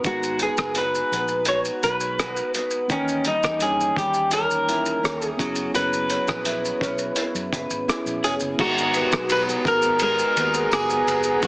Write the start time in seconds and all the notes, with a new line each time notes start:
Already playing: B3 F#4
0.03 G#1 G#3 B3 D#4 F#4, kick, closed hi-hat, shaker
0.08 A#5
0.23 shaker
0.39 B3 G#4, closed hi-hat, shaker
0.57 F#1, kick, cross-stick, shaker
0.75 F#4 B4, closed hi-hat, shaker
0.95 shaker
1.12 A#1 B3, closed hi-hat, shaker
1.28 shaker
1.45 F#4 C#5, closed hi-hat, shaker
1.65 shaker
1.83 B1 B4, closed hi-hat, shaker
2.00 shaker
2.19 F#4, cross-stick, closed hi-hat, shaker
2.36 shaker
2.54 B3, closed hi-hat, shaker
2.71 shaker
2.88 D#2 D#3 E3 A#3 C#4, kick, closed hi-hat, shaker
2.92 C#4 G5
3.08 shaker
3.25 G3 D#4, closed hi-hat, shaker
3.43 E2, kick, cross-stick, shaker
3.60 G2 C#4 G#4, closed hi-hat, shaker
3.80 shaker
3.96 D#2 G3 G4, kick, closed hi-hat, shaker
4.14 shaker
4.31 C#4 A#4, closed hi-hat, shaker
4.51 shaker
4.68 E4, closed hi-hat, shaker
4.86 shaker
5.03 D#2 C#4, cross-stick, closed hi-hat, shaker
5.22 shaker
5.26 G#4
5.36 F#1 F#3 B3 C#4 E4, kick, closed hi-hat, shaker
5.41 G#4
5.56 shaker
5.74 F#1 F#3 B4, closed hi-hat, shaker
5.93 shaker
6.10 C#4, closed hi-hat, shaker
6.28 A#1, kick, cross-stick, shaker
6.45 E4, closed hi-hat, shaker
6.65 shaker
6.81 B1 C#4, kick, closed hi-hat, shaker
6.98 shaker
7.16 E4, closed hi-hat, shaker
7.35 F#2, shaker
7.53 F#1 B4, kick, closed hi-hat, shaker
7.70 G#1, shaker
7.87 B3 C#4 E4 G#4, cross-stick, closed hi-hat, shaker
8.06 A#1, shaker
8.24 E1 C#4 G#4, closed hi-hat, shaker
8.40 F#1, shaker
8.57 G#1 G#3 B3 D#4 F#4 G#4 A#4 F#5 A#5, kick, crash
8.62 A#5
8.77 F#4, shaker
8.93 B3, ride, tambourine, shaker
9.12 B1, kick, cross-stick, shaker
9.29 F#4 B4, ride, tambourine, shaker
9.48 B3, shaker
9.65 G#1 A#4, kick, ride, tambourine, shaker
9.82 B3, shaker
9.99 G#3 A#4, ride, tambourine, shaker
10.19 F#4, shaker
10.36 D#2 B3, ride, tambourine, shaker
10.54 A#4, shaker
10.71 F#1 F#4 G#4, cross-stick, ride, tambourine, shaker
10.90 B3, shaker
11.07 F#1 A#4, ride, tambourine, shaker
11.23 B3, shaker
11.40 G#1 G#3 B3 D#4 F#4 A#4, kick, ride, shaker